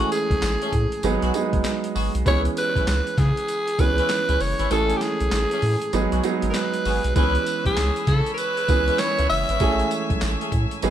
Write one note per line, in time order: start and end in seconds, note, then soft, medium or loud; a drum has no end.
0.00 0.71 E3 medium
0.00 0.72 G#3 medium
0.00 0.72 A3 medium
0.00 0.72 C#4 medium
0.00 0.11 F#4 loud
0.00 0.72 G#4 medium
0.00 closed hi-hat medium
0.12 1.30 G#4 medium
0.12 closed hi-hat medium
0.12 tambourine medium
0.31 0.39 B1 loud
0.31 kick loud
0.31 closed hi-hat medium
0.42 0.56 A1 medium
0.42 snare loud
0.42 clap loud
0.42 closed hi-hat medium
0.42 tambourine medium
0.61 0.72 A3 medium
0.61 0.72 C#4 medium
0.61 0.72 G#4 medium
0.61 closed hi-hat medium
0.73 0.86 A2 loud
0.73 kick loud
0.73 closed hi-hat medium
0.92 closed hi-hat medium
1.03 1.17 G#1 loud
1.03 1.30 F#3 loud
1.03 1.30 G#3 medium
1.03 1.30 B3 medium
1.03 1.30 D#4 medium
1.03 1.30 G#4 loud
1.03 closed hi-hat medium
1.03 tambourine medium
1.22 1.31 B1 medium
1.22 1.33 B3 medium
1.22 1.33 F#4 medium
1.22 1.33 G#4 medium
1.22 closed hi-hat soft
1.34 2.03 F#3 medium
1.34 2.03 G#3 medium
1.34 2.03 B3 medium
1.34 2.03 D#4 medium
1.34 2.04 G#4 loud
1.34 closed hi-hat medium
1.34 tambourine medium
1.53 1.61 G#1 medium
1.53 kick medium
1.53 closed hi-hat medium
1.64 snare loud
1.64 clap loud
1.64 closed hi-hat medium
1.64 tambourine loud
1.84 closed hi-hat medium
1.95 2.09 G#1 medium
1.95 2.12 B3 medium
1.95 2.12 F#4 medium
1.95 2.13 G#4 medium
1.95 open hi-hat medium
1.95 tambourine medium
2.15 2.23 B1 loud
2.15 closed hi-hat medium
2.25 2.48 C#2 loud
2.25 3.16 E3 medium
2.25 3.16 G#3 medium
2.25 3.17 B3 medium
2.25 2.43 C#4 medium
2.25 3.17 C#4 medium
2.25 2.43 E4 medium
2.25 3.17 G#4 medium
2.25 2.43 B4 loud
2.25 2.41 C#5 loud
2.25 kick loud
2.25 closed hi-hat medium
2.25 tambourine medium
2.45 closed hi-hat medium
2.57 2.86 B4 loud
2.57 closed hi-hat medium
2.57 tambourine medium
2.75 2.84 B1 medium
2.75 2.86 C#4 medium
2.75 2.86 E4 medium
2.75 2.86 B4 medium
2.75 kick loud
2.75 closed hi-hat medium
2.87 3.01 C#2 loud
2.87 3.20 B4 medium
2.87 snare loud
2.87 clap loud
2.87 closed hi-hat medium
2.87 tambourine medium
3.07 closed hi-hat medium
3.18 3.31 C#3 loud
3.18 3.82 G#4 loud
3.18 kick loud
3.18 snare medium
3.18 closed hi-hat medium
3.37 closed hi-hat medium
3.48 closed hi-hat medium
3.48 tambourine medium
3.68 closed hi-hat medium
3.79 4.01 C#2 medium
3.79 4.48 E3 medium
3.79 4.48 G#3 medium
3.79 4.48 B3 medium
3.79 4.49 C#4 medium
3.79 4.49 G#4 medium
3.79 4.42 B4 loud
3.79 kick loud
3.79 closed hi-hat medium
3.79 tambourine medium
3.97 4.08 C#4 medium
3.97 4.08 E4 medium
3.97 4.08 B4 medium
3.97 closed hi-hat medium
4.09 snare loud
4.09 clap loud
4.09 closed hi-hat medium
4.09 tambourine loud
4.28 4.37 C#2 medium
4.28 4.39 C#4 medium
4.28 4.39 E4 medium
4.28 4.39 B4 medium
4.28 closed hi-hat medium
4.40 4.54 F#1 medium
4.40 4.73 C#5 loud
4.40 open hi-hat medium
4.40 tambourine medium
4.58 4.68 G#1 medium
4.58 4.69 C#4 medium
4.58 4.69 E4 medium
4.58 4.70 B4 medium
4.58 closed hi-hat medium
4.70 4.93 A1 loud
4.70 5.61 E3 medium
4.70 5.61 G#3 medium
4.70 4.99 A3 loud
4.70 5.62 A3 medium
4.70 4.99 C#4 medium
4.70 5.62 C#4 medium
4.70 4.99 G#4 loud
4.70 5.62 G#4 medium
4.70 4.98 A4 loud
4.70 closed hi-hat medium
4.70 tambourine medium
4.90 closed hi-hat medium
4.96 5.03 G4 medium
5.01 6.24 G#4 loud
5.01 snare medium
5.01 closed hi-hat medium
5.01 tambourine medium
5.20 5.29 B1 medium
5.20 closed hi-hat medium
5.32 5.46 A1 medium
5.32 snare loud
5.32 clap loud
5.32 closed hi-hat medium
5.32 tambourine medium
5.51 5.61 A3 medium
5.51 5.62 C#4 medium
5.51 5.62 G#4 medium
5.51 closed hi-hat medium
5.62 5.76 A2 loud
5.62 open hi-hat medium
5.82 closed hi-hat medium
5.93 6.07 G#1 loud
5.93 6.19 F#3 loud
5.93 6.19 G#3 medium
5.93 6.19 B3 medium
5.93 6.20 D#4 medium
5.93 6.20 G#4 loud
5.93 closed hi-hat medium
5.93 tambourine medium
6.12 6.21 B1 medium
6.12 6.22 B3 medium
6.12 6.23 F#4 medium
6.12 6.23 G#4 medium
6.12 closed hi-hat medium
6.24 6.93 F#3 loud
6.24 6.93 G#3 medium
6.24 6.93 B3 medium
6.24 6.93 D#4 medium
6.24 6.93 G#4 loud
6.24 closed hi-hat medium
6.24 tambourine medium
6.42 6.51 G#1 medium
6.42 closed hi-hat medium
6.50 6.57 A#4 medium
6.54 7.15 B4 medium
6.54 snare loud
6.54 clap loud
6.54 closed hi-hat medium
6.54 tambourine loud
6.74 closed hi-hat medium
6.85 6.99 G#1 medium
6.85 7.02 B3 medium
6.85 7.02 F#4 medium
6.85 7.03 G#4 medium
6.85 open hi-hat medium
6.85 tambourine medium
7.04 7.12 B1 loud
7.04 closed hi-hat medium
7.16 7.37 C#2 loud
7.16 8.06 E3 medium
7.16 8.06 G#3 medium
7.16 8.06 B3 medium
7.16 7.33 C#4 loud
7.16 8.07 C#4 medium
7.16 7.33 E4 medium
7.16 8.07 G#4 medium
7.16 7.62 B4 loud
7.16 7.33 B4 loud
7.16 10.79 C#5 medium
7.16 10.90 G#5 medium
7.16 9.58 B5 medium
7.16 10.79 E6 medium
7.16 kick loud
7.16 closed hi-hat medium
7.16 tambourine medium
7.35 closed hi-hat medium
7.47 closed hi-hat medium
7.47 tambourine medium
7.65 7.74 B1 medium
7.65 7.76 C#4 medium
7.65 7.76 E4 medium
7.65 8.09 G#4 loud
7.65 7.76 B4 medium
7.65 kick medium
7.65 closed hi-hat medium
7.77 7.91 C#2 loud
7.77 snare loud
7.77 clap loud
7.77 closed hi-hat medium
7.77 tambourine medium
7.96 closed hi-hat medium
8.07 8.21 C#3 loud
8.07 8.33 A4 medium
8.07 kick medium
8.07 snare medium
8.07 closed hi-hat medium
8.26 closed hi-hat medium
8.34 8.39 A#4 medium
8.34 9.00 B4 loud
8.34 closed hi-hat medium
8.38 tambourine medium
8.57 closed hi-hat medium
8.69 8.90 C#2 loud
8.69 9.38 E3 medium
8.69 9.38 G#3 medium
8.69 9.38 B3 medium
8.69 9.38 C#4 medium
8.69 9.38 G#4 medium
8.69 kick loud
8.69 closed hi-hat medium
8.69 tambourine medium
8.87 8.98 C#4 medium
8.87 8.98 E4 medium
8.87 8.98 B4 medium
8.87 closed hi-hat medium
8.99 9.29 C#5 loud
8.99 snare loud
8.99 clap loud
8.99 closed hi-hat medium
8.99 tambourine loud
9.18 9.27 C#2 medium
9.18 9.29 C#4 medium
9.18 9.29 E4 medium
9.18 9.29 B4 medium
9.18 closed hi-hat medium
9.30 9.44 F#1 medium
9.30 10.18 E5 loud
9.30 open hi-hat medium
9.30 tambourine medium
9.49 9.57 G#1 medium
9.49 9.59 C#4 medium
9.49 9.59 E4 medium
9.49 9.60 B4 medium
9.49 closed hi-hat medium
9.60 9.82 A1 loud
9.60 10.51 E3 medium
9.60 10.51 G#3 medium
9.60 9.89 A3 loud
9.60 10.51 A3 medium
9.60 9.89 C#4 medium
9.60 10.51 C#4 medium
9.60 9.89 G#4 loud
9.60 10.51 G#4 medium
9.60 10.81 E5 medium
9.60 kick loud
9.60 closed hi-hat medium
9.60 tambourine medium
9.80 closed hi-hat medium
9.91 closed hi-hat medium
9.91 tambourine medium
10.10 10.18 B1 medium
10.10 kick loud
10.10 closed hi-hat medium
10.21 10.36 A1 medium
10.21 snare loud
10.21 clap loud
10.21 closed hi-hat medium
10.21 tambourine medium
10.41 10.51 A3 medium
10.41 10.51 C#4 medium
10.41 10.51 G#4 medium
10.41 closed hi-hat medium
10.52 10.66 A2 loud
10.52 kick medium
10.52 closed hi-hat medium
10.71 closed hi-hat medium
10.82 10.90 G#1 loud
10.82 10.90 F#3 loud
10.82 10.90 G#3 medium
10.82 10.90 B3 medium
10.82 10.90 D#4 medium
10.82 10.90 G#4 loud
10.82 10.90 B4 medium
10.82 10.90 F#5 medium
10.82 10.90 D#6 medium
10.82 closed hi-hat medium
10.82 tambourine medium